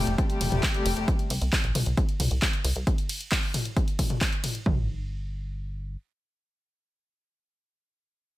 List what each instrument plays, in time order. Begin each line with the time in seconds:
Already playing: string section C3 G3 A3 G4
0.07 analog synth bass F1, closed hi-hat
0.18 string section C3 G3 A3 G4, kick, closed hi-hat
0.29 string section C3 G3 A3 G4, closed hi-hat
0.41 analog synth bass F1, open hi-hat, mid tom, ride
0.52 analog synth bass F1, string section C3 G3 A3 G4, closed hi-hat, mid tom
0.63 kick, clap, closed hi-hat
0.74 string section C3 G3 A3 G4, closed hi-hat
0.86 analog synth bass F1, open hi-hat, ride
0.97 analog synth bass F1, string section C3 G3 A3 G4, closed hi-hat
1.08 kick, closed hi-hat
1.19 closed hi-hat
1.30 analog synth bass C2, open hi-hat, ride
1.41 analog synth bass C2, closed hi-hat
1.53 kick, clap, closed hi-hat
1.64 analog synth bass A#1, closed hi-hat
1.75 analog synth bass C2, open hi-hat, mid tom, ride
1.86 analog synth bass C2, closed hi-hat
1.97 kick, closed hi-hat
2.09 closed hi-hat
2.20 analog synth bass C2, open hi-hat, mid tom, ride
2.31 analog synth bass C2, closed hi-hat
2.42 kick, clap, closed hi-hat
2.53 closed hi-hat
2.65 analog synth bass C2, open hi-hat, ride
2.76 analog synth bass C2, closed hi-hat
2.87 kick, closed hi-hat
2.98 closed hi-hat
3.09 open hi-hat, ride
3.21 closed hi-hat
3.32 kick, clap, closed hi-hat
3.43 open hi-hat
3.54 open hi-hat, mid tom, ride
3.65 closed hi-hat
3.77 kick, closed hi-hat
3.88 closed hi-hat
3.99 kick, open hi-hat, mid tom, ride
4.10 closed hi-hat, mid tom
4.21 kick, clap, closed hi-hat
4.33 closed hi-hat
4.44 open hi-hat, mid tom, ride
4.55 closed hi-hat
4.66 analog synth bass G1, kick, floor tom